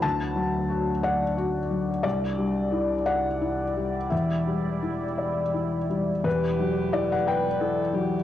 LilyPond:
<<
  \new Staff \with { instrumentName = "Viola" } { \time 6/8 \key e \minor \tempo 4. = 58 r2. | r2. | r2. | g'4. b'8 a'8 g'8 | }
  \new Staff \with { instrumentName = "Felt piano" } { \time 6/8 \key e \minor a''4. fis''8 r4 | d''4. fis''4. | e''2~ e''8 r8 | b'4 d''16 fis''16 g''4. | }
  \new Staff \with { instrumentName = "Felt piano" } { \time 6/8 \key e \minor d,8 fis8 fis'8 d''8 fis'8 fis8 | c,8 g8 e'8 d''8 e'8 g8 | e,8 g8 e'8 d''8 e'8 g8 | e,8 fis8 e'8 b'8 e'8 fis8 | }
  \new Staff \with { instrumentName = "Ambient pad" } { \time 6/8 \key e \minor << { d''2.~ | d''2.~ | d''2. | b'2. | } \\ { <fis d'>2. | <g e'>2.~ | <g e'>2. | <e e'>2. | } >> }
  \new Staff \with { instrumentName = "Double bass" } { \clef bass \time 6/8 \key e \minor d,2. | c,2. | e,,2. | e,,2. | }
>>